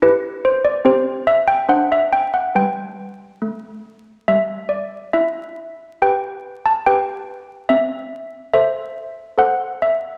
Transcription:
0.02 E4 G4 B4
0.45 C5
0.65 D5
0.85 C4 G4 C5
1.27 E5
1.48 G5
1.69 D4 C5 F#5
1.92 E5
2.13 G5
2.34 F#5
2.55 G3 B4 G5
3.42 A3
4.28 G3 E5
4.69 D5
5.13 E4 E5
6.02 G4 B4 G5
6.65 A5
6.86 G4 B4 G5
7.69 C4 E5
8.53 A4 C5 E5
9.38 A4 C5 F#5
9.82 E5

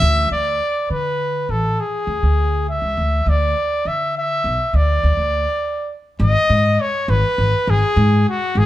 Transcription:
Already playing: A3 C#4 D4 F#4 E5
0.02 D2
0.31 D2 D5
0.90 D3 B4
1.49 A1 A4
1.80 G#4
2.07 D2
2.23 D2
2.69 E5
2.82 C#2
2.97 D2
3.26 D2 D5
3.85 D3 E5
4.17 E5
4.44 B1
4.73 D2 D5
5.03 D2
5.17 D2
6.20 G#1 D#5
6.50 G#2
6.81 C#5
7.08 G#1 B4
7.38 G#1
7.67 G#1 G#4
7.96 G#2
8.29 F#4
8.55 G#1 G#4

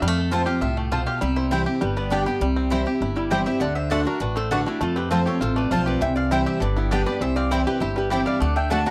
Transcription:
0.02 F2 G3 F5
0.07 A3
0.17 A4
0.31 F3 A3 C4 F4 C5 A5
0.46 C4 F4 G4 F5
0.61 C2 A2 F4 E5
0.77 A3 G4
0.91 B2 C4 F4 C5 A5
1.06 G4 F5
1.21 C2 C3 G3 E5
1.36 E4 C5
1.51 E3 G3 C4 E4 C5 G5
1.66 C4 E4 G4
1.81 G1 G2 G3 G4 B4
1.97 B3 B4 D5
2.10 D3 G3 B3 D4 G4 D5 G5
2.26 B3 G4 G5 B5
2.41 C2 C3 G3
2.56 C4
2.70 E3 G3 C4 E4 C5 G5
2.86 C4 E4 G4
3.01 G1 G2 E4
3.16 G3 E4 G4
3.31 E3 G3 C4 E4 G4 C5 G5
3.46 C4 E4 G4 C5 E5
3.60 D2 D3 D5 F#5
3.75 C5 E5
3.90 D3 A3 D4 F#4 A4 C5 D5 F#5
4.05 D4 F#4 A#4
4.20 A1 A2 D4 F#4 B4
4.36 A3 A4 C5
4.51 D3 A3 D4 F#4 B4 D5 F#5
4.66 A3 D4 E4 F#4 G4
4.81 F2 A3 F4 A4
4.96 C4 G4 B4
5.11 F3 A3 C4 F4 A4 C5 A5
5.26 C4 F4 G4 A4 C#5
5.41 A1 C3 F4 A4 C5
5.56 A3 B4 D5
5.71 B1 F3 A3 C4 F4 C5 F5 A5
5.86 G4 B4 D5
6.01 C2 C3 E3 E5 G5
6.16 D5 F5
6.31 E3 G3 C4 E4 C5 E5 G5
6.46 G4 C5 E5
6.60 G1 G2 D3 B4 D5
6.77 B3 E4 G4
6.91 D3 G3 B3 D4 G4 B4 D5 G5
7.06 B3 G4 B4 D5
7.21 C2 C3 E3 C5 E5
7.36 C4 D5 F5
7.51 E3 G3 C4 E4 G4 C5 D5 G5
7.67 C4 E4 G4 B4
7.80 G1 G2 E4 G4 C5
7.96 G3 G4 B4
8.10 E3 G3 C4 E4 G4 C5 D5 G5
8.26 G3 D5 F5
8.40 D2 D3 A3 D5 F#5
8.56 D4 E5 G5
8.70 D3 A3 D4 F#4 D5 F#5 A5
8.86 D4 F#4 F#5 A#5

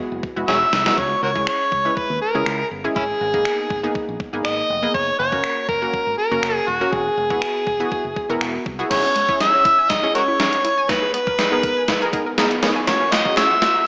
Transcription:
Already playing: G#3 B3 E4 F#4
0.12 F#1
0.23 kick
0.36 E1 G#3 B3 E4 F#4
0.48 E1 G#4 C#5 E5, snare
0.73 C2, snare
0.86 G#3 B3 E4 F#4, snare
0.98 C#2 C#5, kick
1.23 C#2 F#4 A#4 C#5
1.35 G#3 C#4 E4 G#4, kick
1.47 C#5, finger snap
1.72 C#2, kick
1.85 G#3 C#4 E4 B4
1.97 B4, kick
2.10 D#2
2.22 A#4
2.35 C#2 G#3 C#4 E4 G#4
2.46 C#2, finger snap
2.71 G1
2.84 G#3 C#4 E4 G#4
2.96 G#1 C#4 E4 G#4, kick
3.21 G#1
3.34 A#3 B3 D#4 G#4, kick
3.45 finger snap
3.70 G#1, kick
3.83 A#3 B3 D#4 G#4
3.95 kick
4.09 A#1
4.20 kick
4.33 G#1 A#3 B3 D#4 G#4
4.45 G#1 D#5, finger snap
4.70 F1
4.82 A#3 B3 D#4 G#4
4.94 F#1 C#5, kick
5.19 F#1 C#5
5.32 A#3 C#4 F#4 A#4, kick
5.44 finger snap
5.69 F#1 A#4, kick
5.82 A#3 C#4 F#4 A#4
5.94 kick
6.07 G#1
6.18 A#4
6.31 F#1 A#3 C#4 F#4 A#4
6.43 F#1, finger snap
6.55 G#4
6.68 D#1 F#4
6.81 A#3 C#4 F#4 A#4
6.93 E1 G#4, kick
7.17 E1
7.30 B3 E4 F#4 G#4, kick
7.42 finger snap
7.67 E1, kick
7.80 B3 E4 F#4 G#4
7.92 kick
8.05 F#1
8.16 kick
8.29 E1 B3 E4 F#4 A#4
8.41 E1, finger snap
8.66 C2, kick
8.79 B3 E4 F#4 G#4
8.90 C#3 C#4 E4 G#4 C#5, kick, snare, closed hi-hat, crash, riser
9.04 C#4
9.16 G#3, closed hi-hat
9.29 C#4 E4 G#4 C#5, kick
9.40 C#4 E5, snare, closed hi-hat
9.53 C#5
9.65 E4, kick, closed hi-hat
9.78 G#5
9.90 C#3 D#5, kick, snare, closed hi-hat
10.03 C#4 E4 G#4 C#5
10.15 G#3 F#4 A#4 C#5, closed hi-hat
10.28 E4
10.40 C#4, snare, closed hi-hat
10.53 closed hi-hat
10.64 E4, closed hi-hat
10.78 G#5
10.89 A#3 B4, kick, snare, closed hi-hat
11.02 G#4
11.14 B3 B4, closed hi-hat
11.27 A#4, kick
11.39 G#4, snare, closed hi-hat
11.52 B3 D#4 G#4 A#4 B4
11.63 A#4, kick, closed hi-hat
11.77 G#5
11.88 A#3, kick, snare, closed hi-hat
12.01 G#4 A#4
12.13 B3 D#4 G#4 A#4, kick, closed hi-hat
12.26 A#4
12.38 B3 D#4 G#4 A#4, snare, closed hi-hat
12.51 closed hi-hat
12.62 B3 D#4 G#4 A#4 C#5, snare, open hi-hat
12.76 G#5
12.87 F#3 A#3 C#4 F#4 A#4 C#5, kick, snare, closed hi-hat
13.01 C#4
13.12 A#3 D#5, snare, clap, closed hi-hat
13.25 A#3 C#4 F#4 G#4, kick
13.37 C#4 G#4 C#5 E5, snare, clap, closed hi-hat
13.50 F#5
13.62 F#4, kick, snare, closed hi-hat
13.75 A#5

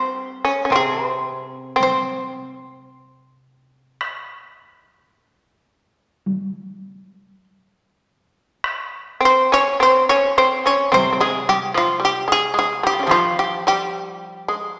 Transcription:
Already playing: G3 C4 C5
0.45 C#4
0.65 C#4
0.70 C3 C4
0.76 G#4
1.09 C5
1.76 C4
1.80 C5, taiko high
4.01 taiko rim
6.26 taiko high
8.64 taiko rim
9.20 C4
9.25 C5
9.52 C#4 C#5
9.80 C4 C5
10.09 C#4 C#5
10.38 C4 C5
10.66 C#4 C#5
10.92 C3 C4 C5, taiko high
11.13 C4
11.21 G#3 G#4
11.49 G4, taiko high
11.74 F3 F4
12.00 G3
12.05 G4
12.28 G#3
12.32 G#4
12.54 G#3
12.59 G#4
12.83 G3 G4
12.93 F4
12.99 C4 C#4
13.06 F3 G3 G#3
13.11 F3 F4, taiko rim
13.39 G4
13.67 G3 G4
14.48 G#3

